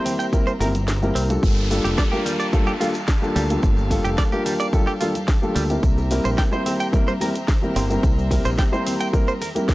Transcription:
Already playing: grand piano G3 A#3 C4 E4 C5, violin section G4 C5 E5 A#5
0.05 clean electric guitar C4, open hi-hat, low conga, shaker
0.19 clean electric guitar G5, closed hi-hat, tambourine, shaker
0.33 grand piano G3 A#3 C4 E4 A#4, kick, closed hi-hat, tambourine, high bongo, high conga, shaker
0.47 clean electric guitar C5, tambourine, shaker
0.60 fingered electric bass G1, grand piano G3 A#3 C4 E4 A#4, clean electric guitar A#4, open hi-hat, high bongo, low conga, shaker
0.75 closed hi-hat, tambourine, high conga, shaker
0.88 snare, closed hi-hat, tambourine, shaker
1.02 grand piano G3 A#3 C4 E4 A#4, tambourine, high bongo, low conga, shaker
1.15 fingered electric bass C2, clean electric guitar C4, open hi-hat, shaker
1.29 grand piano G3 A#3 D4 F4 A4, closed hi-hat, tambourine, high bongo, shaker
1.43 fingered electric bass G1, violin section A#3 G4 F5 A5, kick, closed hi-hat, tambourine, downlifter, shaker
1.57 tambourine, high bongo, shaker
1.70 grand piano G3 A#3 D4 F4 A4, open hi-hat, shaker
1.84 fingered electric bass F1, clean electric guitar G4, closed hi-hat, tambourine, high bongo, shaker
1.98 clean electric guitar D5, kick, snare, closed hi-hat, tambourine, shaker
2.12 grand piano G3 A#3 D4 F4 A#4, clean electric guitar G4, tambourine, shaker
2.25 clean electric guitar G3, open hi-hat, high bongo, low conga, shaker
2.40 clean electric guitar D5, closed hi-hat, tambourine, shaker
2.53 grand piano G3 A#3 D4 F4 A4, kick, closed hi-hat, tambourine, high bongo, high conga, shaker
2.66 clean electric guitar G4, tambourine, high conga, shaker
2.80 grand piano G3 A#3 D4 F4 A4, clean electric guitar F4, open hi-hat, low conga, shaker
2.94 closed hi-hat, tambourine, high bongo, shaker
3.08 kick, snare, closed hi-hat, tambourine, shaker
3.22 grand piano G3 A#3 D4 F4 A4, tambourine, high bongo, low conga, shaker
3.36 fingered electric bass D2, clean electric guitar G3, open hi-hat, high conga, shaker
3.50 grand piano G3 A#3 D4 F4 A4, closed hi-hat, tambourine, shaker
3.62 fingered electric bass G1, kick, closed hi-hat, tambourine, high bongo, shaker
3.77 tambourine, high conga, shaker
3.90 grand piano G3 A#3 D4 F4 A4, kick, open hi-hat, high bongo, shaker
4.05 fingered electric bass F1, clean electric guitar G4, closed hi-hat, tambourine, shaker
4.18 clean electric guitar D5, kick, snare, closed hi-hat, tambourine, shaker
4.32 grand piano G3 A#3 D4 F4 A#4, clean electric guitar G4, tambourine, high bongo, shaker
4.46 clean electric guitar G3, open hi-hat, low conga, shaker
4.60 clean electric guitar D5, closed hi-hat, tambourine, high bongo, shaker
4.73 grand piano G3 A#3 D4 F4 A4, kick, closed hi-hat, tambourine, high conga, shaker
4.87 clean electric guitar G4, tambourine, shaker
5.00 grand piano G3 A#3 D4 F4 A4, clean electric guitar F4, open hi-hat, high bongo, low conga, shaker
5.15 closed hi-hat, tambourine, high conga, shaker
5.28 kick, snare, closed hi-hat, tambourine, high bongo, shaker
5.42 grand piano G3 A#3 D4 F4 A4, tambourine, low conga, shaker
5.55 fingered electric bass D2, clean electric guitar G3, open hi-hat, shaker
5.70 grand piano G3 A#3 C4 E4 A#4, closed hi-hat, tambourine, high bongo, shaker
5.83 fingered electric bass C2, violin section C5 E5 A#5, kick, closed hi-hat, tambourine, shaker
5.98 tambourine, high bongo, shaker
6.11 grand piano G3 A#3 C4 E4 A#4, open hi-hat, shaker
6.25 fingered electric bass A#1, clean electric guitar C5, closed hi-hat, tambourine, shaker
6.38 clean electric guitar G5, kick, snare, closed hi-hat, tambourine, high bongo, shaker
6.52 grand piano G3 A#3 C4 E4 C5, clean electric guitar C5, tambourine, shaker
6.66 clean electric guitar C4, open hi-hat, high bongo, low conga, shaker
6.80 clean electric guitar G5, closed hi-hat, tambourine, shaker
6.93 grand piano G3 A#3 C4 E4 A#4, kick, closed hi-hat, tambourine, high conga, shaker
7.07 clean electric guitar C5, tambourine, high bongo, high conga, shaker
7.20 grand piano G3 A#3 C4 E4 A#4, clean electric guitar A#4, open hi-hat, low conga, shaker
7.34 closed hi-hat, tambourine, high bongo, shaker
7.48 kick, snare, closed hi-hat, tambourine, shaker
7.62 grand piano G3 A#3 C4 E4 A#4, tambourine, low conga, shaker
7.76 fingered electric bass G1, clean electric guitar C4, open hi-hat, high bongo, high conga, shaker
7.90 grand piano G3 A#3 C4 E4 A#4, closed hi-hat, tambourine, shaker
8.03 fingered electric bass C2, kick, closed hi-hat, tambourine, high bongo, shaker
8.17 tambourine, high conga, shaker
8.30 grand piano G3 A#3 C4 E4 A#4, kick, open hi-hat, shaker
8.44 fingered electric bass A#1, clean electric guitar C5, closed hi-hat, tambourine, high bongo, shaker
8.58 clean electric guitar G5, kick, snare, closed hi-hat, tambourine, shaker
8.72 grand piano G3 A#3 C4 E4 C5, clean electric guitar C5, tambourine, high bongo, shaker
8.87 clean electric guitar C4, open hi-hat, low conga, shaker
9.00 clean electric guitar G5, closed hi-hat, tambourine, shaker
9.13 grand piano G3 A#3 C4 E4 A#4, kick, closed hi-hat, tambourine, high bongo, high conga, shaker
9.28 clean electric guitar C5, tambourine, shaker
9.41 clean electric guitar A#4, open hi-hat, high bongo, low conga, shaker
9.55 grand piano G3 A#3 C4 E4 A#4, closed hi-hat, tambourine, high conga, shaker
9.69 kick, snare, closed hi-hat, tambourine, shaker

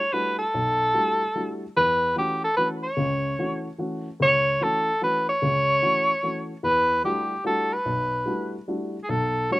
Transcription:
Already playing: soprano saxophone C#5
0.13 grand piano G3 A3 D4 E4 F#4, soprano saxophone B4
0.38 soprano saxophone A4
0.54 grand piano B1
0.94 grand piano G3 A3 D4 E4 F#4
1.35 grand piano G3 A3 D4 E4 F#4
1.76 grand piano E2 E3, soprano saxophone B4
2.15 grand piano E3 A3 C#4 F#4, soprano saxophone G4
2.44 soprano saxophone A4
2.56 grand piano E3 A3 C#4 F#4, soprano saxophone B4
2.83 soprano saxophone C#5
2.97 grand piano C#2 C#3
3.39 grand piano E3 A3 C#4 F#4
3.78 grand piano E3 A3 C#4 F#4
4.20 grand piano C#2, soprano saxophone C#5
4.61 grand piano E3 A3 C#4 F#4, soprano saxophone A4
5.01 grand piano E3 A3 C#4 F#4, soprano saxophone B4
5.29 soprano saxophone C#5
5.42 grand piano C#2 C#3
5.82 grand piano E3 A3 C#4 F#4
6.23 grand piano E3 A3 C#4 F#4
6.63 grand piano E2, soprano saxophone B4
7.04 grand piano G3 A3 D4 E4 F#4, soprano saxophone G4
7.44 grand piano G3 A3 D4 E4 F#4, soprano saxophone A4
7.73 soprano saxophone B4
7.86 grand piano B1
8.26 grand piano G3 A3 D4 E4 F#4
8.68 grand piano G3 A3 D4 E4 F#4
9.04 soprano saxophone G#4
9.09 grand piano B1, soprano saxophone A4
9.50 grand piano G3 A3 D4 E4 F#4, soprano saxophone C#5

